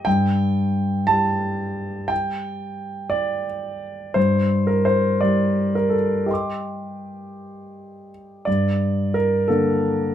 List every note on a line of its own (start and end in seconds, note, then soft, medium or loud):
0.05 2.07 G2 soft
0.05 1.07 G5 medium
1.07 4.16 G3 soft
1.07 2.10 A5 medium
2.08 3.11 G5 medium
3.10 3.46 D5 medium
4.14 6.25 G2 soft
4.14 4.68 C5 medium
4.67 4.85 A#4 medium
4.85 5.21 C5 medium
5.21 8.48 G3 soft
5.21 5.74 D5 medium
5.75 5.93 A#4 medium
5.89 6.28 A4 soft
6.26 8.09 G4 soft
6.26 8.42 D#5 soft
6.31 8.44 C6 soft
6.31 8.45 D6 soft
8.45 9.48 G2 soft
8.45 9.16 D5 medium
9.14 9.50 A#4 medium
9.48 10.15 D3 soft
9.48 10.15 A#3 soft
9.48 10.15 D4 soft
9.48 10.15 A4 medium